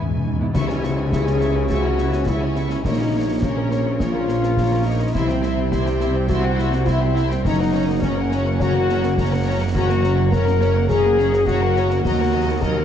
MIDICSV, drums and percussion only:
0, 0, Header, 1, 3, 480
1, 0, Start_track
1, 0, Tempo, 574713
1, 463, Time_signature, 4, 2, 24, 8
1, 10729, End_track
2, 0, Start_track
2, 0, Title_t, "Tam-tam"
2, 451, Note_on_c, 9, 52, 66
2, 535, Note_off_c, 9, 52, 0
2, 10729, End_track
3, 0, Start_track
3, 0, Title_t, "Drums"
3, 457, Note_on_c, 9, 35, 78
3, 457, Note_on_c, 9, 38, 74
3, 457, Note_on_c, 9, 49, 47
3, 540, Note_off_c, 9, 35, 0
3, 540, Note_off_c, 9, 38, 0
3, 540, Note_off_c, 9, 49, 0
3, 580, Note_on_c, 9, 38, 51
3, 664, Note_off_c, 9, 38, 0
3, 701, Note_on_c, 9, 38, 52
3, 785, Note_off_c, 9, 38, 0
3, 939, Note_on_c, 9, 35, 71
3, 939, Note_on_c, 9, 38, 68
3, 1023, Note_off_c, 9, 35, 0
3, 1023, Note_off_c, 9, 38, 0
3, 1058, Note_on_c, 9, 38, 50
3, 1142, Note_off_c, 9, 38, 0
3, 1175, Note_on_c, 9, 38, 51
3, 1259, Note_off_c, 9, 38, 0
3, 1416, Note_on_c, 9, 35, 67
3, 1416, Note_on_c, 9, 38, 67
3, 1499, Note_off_c, 9, 35, 0
3, 1499, Note_off_c, 9, 38, 0
3, 1653, Note_on_c, 9, 38, 51
3, 1736, Note_off_c, 9, 38, 0
3, 1774, Note_on_c, 9, 38, 59
3, 1858, Note_off_c, 9, 38, 0
3, 1890, Note_on_c, 9, 35, 71
3, 1890, Note_on_c, 9, 38, 73
3, 1974, Note_off_c, 9, 35, 0
3, 1974, Note_off_c, 9, 38, 0
3, 2134, Note_on_c, 9, 38, 51
3, 2218, Note_off_c, 9, 38, 0
3, 2254, Note_on_c, 9, 38, 57
3, 2338, Note_off_c, 9, 38, 0
3, 2378, Note_on_c, 9, 35, 81
3, 2378, Note_on_c, 9, 38, 65
3, 2462, Note_off_c, 9, 35, 0
3, 2462, Note_off_c, 9, 38, 0
3, 2860, Note_on_c, 9, 35, 80
3, 2860, Note_on_c, 9, 38, 74
3, 2943, Note_off_c, 9, 35, 0
3, 2943, Note_off_c, 9, 38, 0
3, 3100, Note_on_c, 9, 38, 52
3, 3184, Note_off_c, 9, 38, 0
3, 3341, Note_on_c, 9, 35, 77
3, 3341, Note_on_c, 9, 38, 66
3, 3424, Note_off_c, 9, 35, 0
3, 3424, Note_off_c, 9, 38, 0
3, 3579, Note_on_c, 9, 38, 54
3, 3662, Note_off_c, 9, 38, 0
3, 3700, Note_on_c, 9, 38, 56
3, 3783, Note_off_c, 9, 38, 0
3, 3819, Note_on_c, 9, 35, 70
3, 3819, Note_on_c, 9, 38, 58
3, 3902, Note_off_c, 9, 35, 0
3, 3902, Note_off_c, 9, 38, 0
3, 4301, Note_on_c, 9, 35, 82
3, 4301, Note_on_c, 9, 38, 72
3, 4301, Note_on_c, 9, 49, 30
3, 4384, Note_off_c, 9, 35, 0
3, 4384, Note_off_c, 9, 38, 0
3, 4384, Note_off_c, 9, 49, 0
3, 4418, Note_on_c, 9, 38, 51
3, 4501, Note_off_c, 9, 38, 0
3, 4532, Note_on_c, 9, 38, 55
3, 4616, Note_off_c, 9, 38, 0
3, 4777, Note_on_c, 9, 35, 77
3, 4777, Note_on_c, 9, 38, 75
3, 4860, Note_off_c, 9, 35, 0
3, 4860, Note_off_c, 9, 38, 0
3, 4894, Note_on_c, 9, 38, 54
3, 4977, Note_off_c, 9, 38, 0
3, 5014, Note_on_c, 9, 38, 55
3, 5098, Note_off_c, 9, 38, 0
3, 5258, Note_on_c, 9, 35, 78
3, 5258, Note_on_c, 9, 38, 72
3, 5341, Note_off_c, 9, 35, 0
3, 5341, Note_off_c, 9, 38, 0
3, 5499, Note_on_c, 9, 38, 58
3, 5583, Note_off_c, 9, 38, 0
3, 5613, Note_on_c, 9, 38, 56
3, 5696, Note_off_c, 9, 38, 0
3, 5739, Note_on_c, 9, 35, 67
3, 5739, Note_on_c, 9, 38, 73
3, 5822, Note_off_c, 9, 35, 0
3, 5822, Note_off_c, 9, 38, 0
3, 5980, Note_on_c, 9, 38, 52
3, 6064, Note_off_c, 9, 38, 0
3, 6100, Note_on_c, 9, 38, 56
3, 6183, Note_off_c, 9, 38, 0
3, 6222, Note_on_c, 9, 35, 85
3, 6222, Note_on_c, 9, 38, 61
3, 6306, Note_off_c, 9, 35, 0
3, 6306, Note_off_c, 9, 38, 0
3, 6701, Note_on_c, 9, 35, 82
3, 6701, Note_on_c, 9, 38, 78
3, 6784, Note_off_c, 9, 35, 0
3, 6784, Note_off_c, 9, 38, 0
3, 6943, Note_on_c, 9, 38, 55
3, 7027, Note_off_c, 9, 38, 0
3, 7183, Note_on_c, 9, 35, 81
3, 7183, Note_on_c, 9, 38, 76
3, 7267, Note_off_c, 9, 35, 0
3, 7267, Note_off_c, 9, 38, 0
3, 7428, Note_on_c, 9, 38, 59
3, 7511, Note_off_c, 9, 38, 0
3, 7543, Note_on_c, 9, 38, 61
3, 7626, Note_off_c, 9, 38, 0
3, 7664, Note_on_c, 9, 35, 78
3, 7664, Note_on_c, 9, 38, 67
3, 7748, Note_off_c, 9, 35, 0
3, 7748, Note_off_c, 9, 38, 0
3, 8141, Note_on_c, 9, 35, 88
3, 8141, Note_on_c, 9, 38, 80
3, 8141, Note_on_c, 9, 49, 35
3, 8225, Note_off_c, 9, 35, 0
3, 8225, Note_off_c, 9, 38, 0
3, 8225, Note_off_c, 9, 49, 0
3, 8262, Note_on_c, 9, 38, 60
3, 8346, Note_off_c, 9, 38, 0
3, 8382, Note_on_c, 9, 38, 53
3, 8466, Note_off_c, 9, 38, 0
3, 8621, Note_on_c, 9, 35, 80
3, 8621, Note_on_c, 9, 38, 83
3, 8705, Note_off_c, 9, 35, 0
3, 8705, Note_off_c, 9, 38, 0
3, 8741, Note_on_c, 9, 38, 61
3, 8825, Note_off_c, 9, 38, 0
3, 8861, Note_on_c, 9, 38, 62
3, 8944, Note_off_c, 9, 38, 0
3, 9100, Note_on_c, 9, 35, 76
3, 9100, Note_on_c, 9, 38, 78
3, 9184, Note_off_c, 9, 35, 0
3, 9184, Note_off_c, 9, 38, 0
3, 9346, Note_on_c, 9, 38, 57
3, 9430, Note_off_c, 9, 38, 0
3, 9464, Note_on_c, 9, 38, 64
3, 9547, Note_off_c, 9, 38, 0
3, 9581, Note_on_c, 9, 35, 77
3, 9581, Note_on_c, 9, 38, 80
3, 9664, Note_off_c, 9, 35, 0
3, 9664, Note_off_c, 9, 38, 0
3, 9824, Note_on_c, 9, 38, 57
3, 9907, Note_off_c, 9, 38, 0
3, 9940, Note_on_c, 9, 38, 60
3, 10024, Note_off_c, 9, 38, 0
3, 10064, Note_on_c, 9, 35, 89
3, 10064, Note_on_c, 9, 38, 69
3, 10147, Note_off_c, 9, 35, 0
3, 10147, Note_off_c, 9, 38, 0
3, 10543, Note_on_c, 9, 35, 84
3, 10543, Note_on_c, 9, 38, 73
3, 10626, Note_off_c, 9, 35, 0
3, 10626, Note_off_c, 9, 38, 0
3, 10729, End_track
0, 0, End_of_file